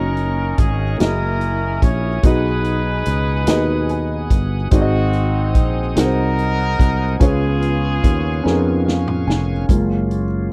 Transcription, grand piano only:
0.00 0.83 A#3 medium
0.00 0.84 C#4 medium
0.00 0.84 D#4 medium
0.00 0.84 F#4 medium
0.00 0.85 C#5 medium
0.97 2.07 A#3 medium
0.97 2.08 E4 medium
0.97 2.08 F#4 medium
0.97 2.08 G#4 medium
0.97 2.09 D#5 medium
2.23 3.44 B2 medium
2.23 3.32 B3 medium
2.23 3.32 D#4 medium
2.23 3.32 F#4 medium
2.23 3.33 G#4 medium
2.23 3.33 D#5 medium
3.47 4.56 B3 medium
3.47 4.56 D#4 medium
3.47 4.56 F#4 medium
3.47 4.57 G#4 medium
3.47 4.57 D#5 medium
3.90 4.69 G#5 medium
4.71 5.93 G#2 medium
4.71 5.80 C4 medium
4.71 5.80 D#4 medium
4.71 5.80 F#4 medium
4.71 5.81 G#4 medium
4.71 4.80 D5 medium
4.81 5.85 D#5 medium
5.95 7.04 C4 medium
5.95 7.04 D#4 medium
5.95 7.04 F#4 medium
5.95 7.05 G#4 medium
5.95 6.04 A#4 medium
6.05 7.09 C5 medium
7.19 8.41 C#3 medium
7.19 8.28 B3 medium
7.19 8.28 C#4 medium
7.19 8.29 F4 medium
7.19 8.29 G#4 medium
7.19 8.29 C#5 medium
8.43 9.52 B3 medium
8.43 9.52 C#4 medium
8.43 8.51 D#4 medium
8.43 9.53 G#4 medium
8.43 9.53 A#4 medium
8.51 9.56 F4 medium
8.86 9.25 F5 medium
9.27 9.66 G#5 medium
9.69 10.24 G#3 soft
9.69 10.25 A#3 soft
9.69 10.24 F4 soft

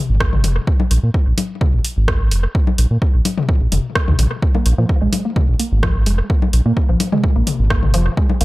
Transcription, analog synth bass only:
0.09 0.45 G#1 medium
0.44 0.59 F1 medium
0.91 0.99 A#1 loud
1.03 1.10 A#2 medium
1.27 1.34 A#1 medium
1.73 1.80 A#1 medium
1.97 2.33 G#1 medium
2.31 2.47 F1 medium
2.78 2.86 A#1 loud
2.91 2.98 A#2 medium
3.14 3.21 A#1 medium
3.61 3.68 A#1 medium
3.72 3.80 F1 loud
4.08 4.15 D#2 medium
4.19 4.27 A#1 medium
4.66 4.74 A#1 loud
4.78 4.85 A#2 medium
5.01 5.09 A#1 medium
5.48 5.55 A#1 medium
5.72 6.08 G#1 medium
6.06 6.22 F1 medium
6.53 6.61 A#1 loud
6.66 6.73 A#2 medium
6.89 6.96 A#1 medium
7.36 7.43 A#1 medium
7.59 7.95 G#1 medium
7.94 8.09 F1 medium
8.41 8.45 A#1 loud

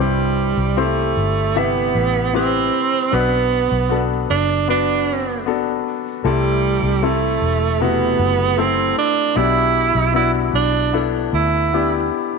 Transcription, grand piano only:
0.00 1.13 G2 soft
0.00 0.73 C4 medium
0.00 0.73 E4 soft
0.00 0.73 G4 soft
0.00 0.74 C5 medium
0.77 1.52 C4 soft
0.77 1.52 E4 soft
0.77 1.52 G4 soft
0.77 1.52 C5 medium
1.55 2.30 C3 soft
1.55 2.30 E4 soft
1.55 2.30 G4 soft
1.55 2.31 E5 medium
2.34 3.08 C4 medium
2.34 3.08 E4 soft
2.34 3.09 G4 soft
2.34 3.09 B4 medium
3.12 3.86 B3 medium
3.12 3.87 D4 soft
3.12 3.87 F#4 soft
3.12 3.87 B4 medium
3.89 4.64 B3 medium
3.89 4.65 D4 soft
3.89 4.65 F#4 soft
3.89 4.65 A4 medium
4.68 5.42 B3 medium
4.68 5.43 D4 soft
4.68 5.43 F#4 soft
4.68 5.43 B4 medium
5.46 6.20 B3 medium
5.46 6.20 D4 soft
5.46 6.21 F#4 soft
5.46 6.21 A4 medium
6.24 7.37 C3 soft
6.24 6.98 A3 medium
6.24 6.99 C4 medium
6.24 6.99 E4 soft
6.24 6.99 A4 medium
7.02 7.76 A3 medium
7.02 7.76 C4 medium
7.02 7.77 E4 medium
7.02 7.77 A4 medium
7.80 8.54 C3 soft
7.80 8.54 A3 medium
7.80 8.54 E4 soft
7.80 8.55 F#4 medium
8.57 9.32 A3 medium
8.57 9.32 C4 soft
8.57 9.32 E4 medium
8.57 9.32 A4 medium
9.35 10.50 B2 soft
9.35 10.10 B3 medium
9.35 10.10 D4 medium
9.35 10.11 E4 soft
9.35 10.11 G4 medium
10.14 10.89 B3 medium
10.14 10.89 D4 soft
10.14 10.89 E4 soft
10.14 10.90 F#4 medium
10.93 11.69 B3 medium
10.93 11.69 D4 soft
10.93 11.70 E4 soft
10.93 11.70 A4 medium
11.73 12.39 B3 medium
11.73 12.39 D4 soft
11.73 12.39 E4 soft
11.73 12.39 G4 medium

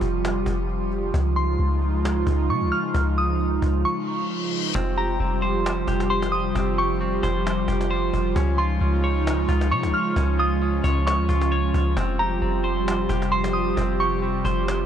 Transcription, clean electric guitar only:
4.75 5.19 C4 medium
4.98 5.87 G4 medium
5.20 6.54 C4 medium
5.42 6.09 C5 loud
5.88 6.77 G4 medium
6.10 7.22 C5 loud
6.55 6.99 C4 medium
6.78 7.67 G4 medium
7.00 8.35 C4 medium
7.23 7.89 C5 loud
7.68 8.36 G4 medium
7.91 8.36 C5 loud
8.36 8.80 C#4 medium
8.59 9.48 F4 medium
8.81 10.15 C#4 medium
9.04 9.71 C#5 medium
9.49 10.38 F4 medium
9.72 10.83 C#5 loud
10.17 10.60 C#4 medium
10.39 11.28 F4 medium
10.62 11.96 C#4 medium
10.84 11.51 C#5 loud
11.29 11.97 F4 medium
11.52 11.97 C#5 loud
11.97 12.41 C4 medium
12.19 13.09 G4 medium
12.42 13.76 C4 medium
12.64 13.31 C5 loud
13.10 13.99 G4 medium
13.32 14.44 C5 medium
13.77 14.21 C4 medium
14.00 14.86 G4 medium
14.22 14.86 C4 medium
14.45 14.86 C5 loud

